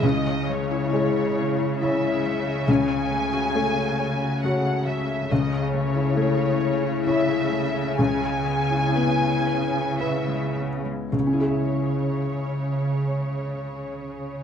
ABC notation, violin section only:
X:1
M:3/4
L:1/8
Q:1/4=66
K:C#m
V:1 name="Violin section"
d c3 e2 | g4 f e | d c3 e2 | g4 e z |
c6 |]